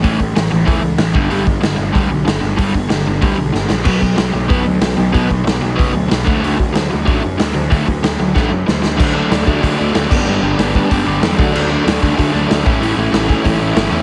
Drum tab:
CC |--------|--------|--------|x-------|
HH |o-o-o-o-|o-o-o-o-|o-o-o---|o-o-o-o-|
SD |--o---o-|--o---o-|--o---oo|--o---o-|
BD |oo--o--o|-o--o---|oo--o---|oo--o---|

CC |--------|--------|--------|x------x|
HH |o-o-o-o-|o-o-o-o-|o-o-----|--o-o-o-|
SD |--o---o-|--o---o-|--o-o-oo|--o---o-|
BD |oo--o--o|-o--o---|oo--o---|o--oo--o|

CC |--------|x-------|--------|
HH |--o-o-o-|--o-o-o-|o-o-o-o-|
SD |--o---o-|--o---o-|--o---o-|
BD |---oo--o|---oo--o|---oo---|